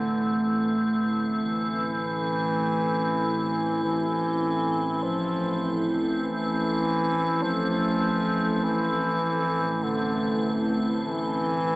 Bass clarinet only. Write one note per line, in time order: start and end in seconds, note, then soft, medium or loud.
0.00 1.16 D3 medium
1.42 3.79 E3 loud
3.83 5.04 E3 loud
5.03 5.96 F3 loud
6.22 7.44 E3 loud
7.42 8.65 F3 loud
8.64 9.85 E3 loud
9.83 10.76 D3 medium
11.05 11.76 E3 loud